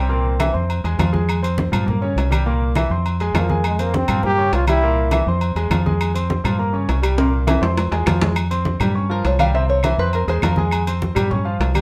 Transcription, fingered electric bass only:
0.00 0.49 C2 medium
0.54 0.82 F2 medium
0.84 0.98 E2 medium
0.99 1.67 F2 loud
1.72 2.13 G2 medium
2.16 2.85 C2 medium
2.90 3.32 F2 medium
3.34 4.03 F2 loud
4.09 4.50 G2 medium
4.52 5.21 C2 medium
5.27 5.54 F2 loud
5.55 5.69 E2 medium
5.70 6.39 F2 loud
6.44 6.86 G2 medium
6.89 7.57 C2 loud
7.62 7.89 F2 medium
7.92 8.05 E2 medium
8.07 8.75 F2 medium
8.80 9.21 G2 medium
9.25 9.93 C2 medium
9.98 10.25 F2 medium
10.27 10.41 E2 medium
10.42 11.10 F2 medium
11.16 11.57 G2 medium
11.60 11.81 C2 loud

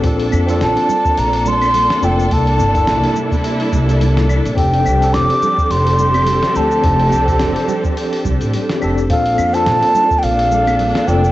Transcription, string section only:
0.00 4.53 A#3 medium
0.00 9.06 D4 medium
0.00 4.53 A4 medium
2.30 4.55 C3 medium
2.30 4.55 G3 medium
2.30 4.55 E4 loud
4.57 9.06 F3 medium
4.57 9.06 C4 medium
4.57 9.06 G4 medium
4.57 9.06 A4 medium
9.09 11.32 A#3 medium
9.09 11.32 D4 medium
9.09 11.32 A4 medium

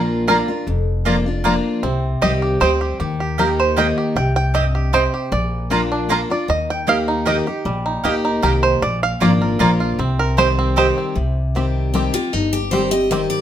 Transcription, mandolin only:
0.28 0.37 A#3 medium
0.28 0.37 F4 medium
0.28 0.38 D5 medium
0.28 0.38 A#5 loud
1.05 1.15 A#3 medium
1.05 1.15 F4 medium
1.05 1.15 D5 medium
1.05 1.15 A#5 medium
1.44 1.54 A#3 loud
1.44 1.54 F4 medium
1.44 1.54 D5 medium
1.44 1.54 A#5 medium
2.22 2.31 C4 medium
2.22 2.31 G4 medium
2.22 2.31 D#5 medium
2.22 2.32 G5 medium
2.60 2.70 C4 medium
2.60 2.70 G4 loud
2.60 2.70 D#5 loud
2.60 2.70 G5 loud
3.38 3.47 A#3 medium
3.38 3.48 G4 medium
3.38 3.48 D#5 medium
3.38 3.48 G5 loud
3.76 3.86 A#3 medium
3.76 3.86 G4 loud
3.76 3.87 D#5 medium
3.76 3.87 G5 loud
4.54 4.64 C4 medium
4.54 4.64 G4 medium
4.54 4.64 D#5 medium
4.54 4.64 G5 medium
4.93 5.03 C4 medium
4.93 5.03 G4 medium
4.93 5.03 D#5 loud
4.93 5.03 G5 loud
5.71 5.80 A#3 medium
5.71 5.80 F4 medium
5.71 5.81 D5 medium
5.71 5.81 A#5 loud
6.09 6.19 A#3 medium
6.09 6.19 F4 medium
6.09 6.20 D5 loud
6.09 6.20 A#5 loud
6.87 6.97 A#3 medium
6.87 6.97 G4 medium
6.87 6.97 D#5 loud
6.87 6.97 G5 medium
7.26 7.36 A#3 medium
7.26 7.36 G4 medium
7.26 7.36 D#5 loud
7.26 7.36 G5 loud
8.04 8.14 A#3 medium
8.04 8.14 G4 medium
8.04 8.14 D#5 medium
8.04 8.14 G5 medium
8.42 8.52 A#3 medium
8.42 8.53 G4 medium
8.42 8.53 D#5 medium
8.42 8.53 G5 loud
9.20 9.30 A#3 medium
9.20 9.31 F4 medium
9.20 9.31 D5 medium
9.20 9.31 A#5 loud
9.59 9.69 A#3 loud
9.59 9.70 F4 loud
9.59 9.70 D5 loud
9.59 9.70 A#5 loud
10.37 10.47 C4 medium
10.37 10.47 G4 medium
10.37 10.48 D#5 medium
10.37 10.48 G5 loud
10.76 10.86 C4 medium
10.76 10.86 G4 loud
10.76 10.87 D#5 loud
10.76 10.87 G5 loud

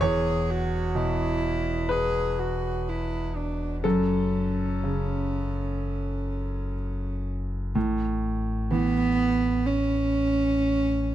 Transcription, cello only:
0.02 0.52 G#4 medium
0.50 0.99 F#4 medium
0.97 1.92 E4 medium
1.91 2.40 G#4 medium
2.39 2.90 F#4 medium
2.89 3.38 E4 medium
3.36 3.84 D4 medium
3.85 7.23 C#4 medium
8.71 9.67 B3 loud
9.66 11.15 C#4 medium

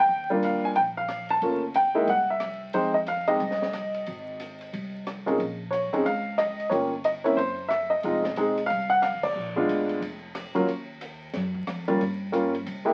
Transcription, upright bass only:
0.09 0.59 D#2 medium
0.63 muted upright bass stroke soft
0.76 1.39 A#1 medium
1.41 2.04 G1 medium
2.07 2.70 C2 medium
2.74 3.37 F2 medium
3.40 4.03 C2 medium
4.08 4.70 G#1 medium
4.73 5.36 C2 medium
5.38 5.89 A#1 medium
5.93 6.04 B1 medium
6.05 6.68 C#2 medium
6.71 7.34 G1 medium
7.37 8.00 F#1 medium
8.04 8.35 F1 medium
8.36 8.67 E1 medium
8.70 9.11 C2 medium
9.14 9.24 D#2 medium
9.25 9.35 C2 medium
9.35 9.66 A#1 medium
9.68 9.99 A1 medium
10.00 10.51 F1 medium
10.55 muted upright bass stroke soft
10.67 11.30 D#2 medium
11.35 11.65 F#2 medium
11.68 11.98 F2 medium
12.00 12.63 G2 loud
12.66 12.93 C2 medium

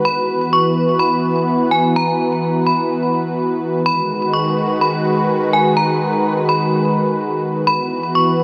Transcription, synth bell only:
0.05 0.50 B5 loud
0.53 0.98 C#6 medium
0.99 1.67 B5 medium
1.71 1.94 G#5 medium
1.96 2.63 A#5 medium
2.67 3.34 B5 medium
3.86 4.31 B5 loud
4.33 4.78 C#6 medium
4.81 5.49 B5 medium
5.53 5.76 G#5 medium
5.77 6.44 A#5 loud
6.49 7.16 B5 medium
7.67 8.12 B5 loud
8.15 8.44 C#6 medium

